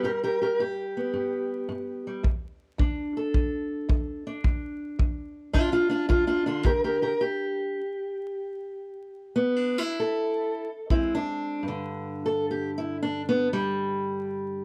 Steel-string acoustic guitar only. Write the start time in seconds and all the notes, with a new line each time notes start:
Already playing: G3
0.03 G2 G4 A#4
0.23 G4 A#4
0.42 G4 A#4
0.59 G2 G4
0.97 B3
1.14 G2
1.69 G2
2.07 G3
2.23 D2
2.78 D2 D4
3.17 A4
3.34 D2
3.89 D2
4.27 D4
4.44 D2
4.99 D2
5.53 D2 D4 F4
5.72 D4 F4
5.89 D4 F4
6.09 D2 D4 F4
6.27 D4 F4
6.46 D3 D4 F4
6.64 G2 G4 A#4
6.84 G4 A#4
7.02 G4 A#4
7.21 G4
9.36 B3
9.56 D4
9.78 E4
10.00 A4
10.90 G#2 G#3 C4 E4
11.15 D4
11.63 G2
11.68 D3
12.26 A4
12.51 G4
12.78 E4
13.02 D4
13.29 B3
13.53 G3